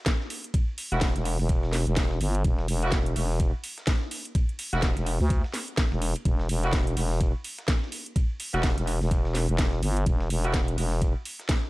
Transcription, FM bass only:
0.92 E1
1.16 E1
1.40 E1
1.87 E1
2.21 G1
2.44 E1
2.68 E1
3.16 E1
4.73 E1
4.97 E1
5.21 D2
5.92 E1
6.25 E1
6.49 E1
6.97 E1
8.54 E1
8.78 E1
9.01 E1
9.49 E1
9.83 G1
10.06 E1
10.30 E1
10.78 E1

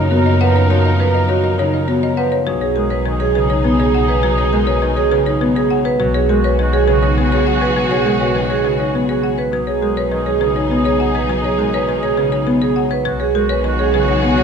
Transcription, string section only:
Already playing: D#4 A#4
2.46 D#4 G#4
6.00 F#4 G#4
9.52 D#4 G#4
13.05 F#4 G#4

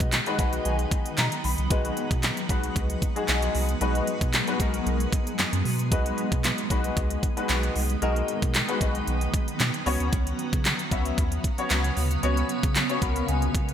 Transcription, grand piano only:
Already playing: G#3 D#4 F#4 B4
0.26 G#3 D#4 F#4 B4
0.39 G#3 D#4 F#4 B4 F#5
0.65 G#5
1.18 A#5
1.44 B5
1.70 G#3 D#4 F#4 B4
2.49 G#3 D#4 F#4 B4
3.16 G#3 D#4 F#4 G#4
3.81 G#3 D#4 F#4 B4
4.47 G#3 D#4 F#4 B4
4.60 G#3 D#4 F#4 A#4
5.91 G#3 D#4 F#4 B4
6.70 G#3 D#4 F#4 B4
7.37 G#3 D#4 F#4 B4
8.02 G#3 D#4 F#4 A#4
8.68 G#3 D#4 F#4 B4
8.81 G#3 D#4 F#4 B4
9.86 B3 C#4 F#4 C#5
10.91 B3 C#4 F#4 E5
11.58 B3 C#4 F#4 C#5
12.23 B3 C#4 F#4 C#5
12.89 B3 C#4 F#4 C#5
13.02 B3 C#4 F#4 A#4 B5
13.29 G#5

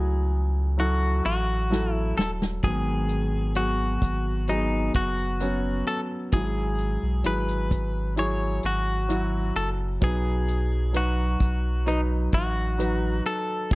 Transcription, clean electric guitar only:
Already playing: G#4
0.80 F#4
1.26 F#4
1.93 E4
2.18 A4
2.64 G#4
3.57 F#4
4.49 D#4
4.96 F#4
5.88 A4
6.33 G#4
7.26 B4
8.19 C#5
8.66 F#4
9.56 A4
10.04 G#4
10.97 F#4
11.88 D#4
12.34 F#4
13.26 A4

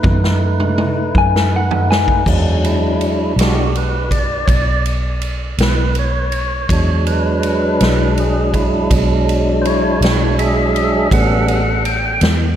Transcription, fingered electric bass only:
0.04 F#2
1.15 F#2
2.26 E2
3.36 B1
4.48 B1
5.58 B1
6.69 E2
7.81 B1
8.91 B1
10.01 B1
11.11 A1
12.21 E2

